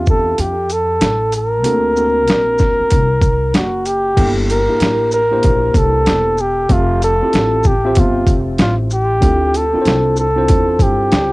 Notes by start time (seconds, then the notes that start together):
Already playing: E2 C4 D4 F4 G4 E5
0.06 A4, kick, shaker
0.38 F2 G4, closed hi-hat
0.70 A4, closed hi-hat, shaker
1.01 A1, snare, closed hi-hat
1.32 A#4, closed hi-hat, shaker
1.63 D2 A#3 C4 D4 F#4 A4, closed hi-hat
1.96 A#3 C4 D4 F#4 A4, shaker
2.04 A#4
2.27 A#1, snare, closed hi-hat
2.58 kick, snare, shaker
2.80 muted upright bass stroke
2.90 C2, kick, closed hi-hat
3.22 kick, closed hi-hat, shaker
3.54 F#1 F#4, snare, closed hi-hat
3.86 G4, closed hi-hat, shaker
4.16 G1 A#3 D4 E4 G4 A4, kick, closed hi-hat, crash
4.50 A#4, closed hi-hat, shaker
4.68 A#3 D4 E4 G4 G#4, muted upright bass stroke
4.76 A#4, closed hi-hat
4.81 A1, snare
5.11 A#4, shaker
5.31 A3 D4 E4 G4 C5
5.37 A#3
5.43 A#1, kick, closed hi-hat
5.74 C2 A4, kick, closed hi-hat, shaker
6.06 E1, snare, closed hi-hat
6.38 G4, shaker
6.69 F1 C4 F4 G4 A4 E5, kick, closed hi-hat
7.02 A4, closed hi-hat, shaker
7.22 C4 E4 F4 G4 A4, muted upright bass stroke
7.33 A1, snare, closed hi-hat
7.63 G4, kick, shaker
7.85 C4 F4 G4 C5 E5
7.95 G1 F4, kick, closed hi-hat
8.27 F1, kick, closed hi-hat, shaker
8.58 A1 F4, snare, closed hi-hat
8.90 G4, shaker
9.21 D2 C4 D4 E4 F4 A4, kick, closed hi-hat
9.54 A4, closed hi-hat, shaker
9.73 C4 D4 E4 F4 A#4, muted upright bass stroke
9.82 C2 C5, closed hi-hat
9.87 snare
10.16 A4, shaker
10.36 C4 D4 E4 F4 C5
10.48 E2, kick, closed hi-hat
10.79 G2 G4, kick, closed hi-hat, shaker
11.12 C#2, snare, closed hi-hat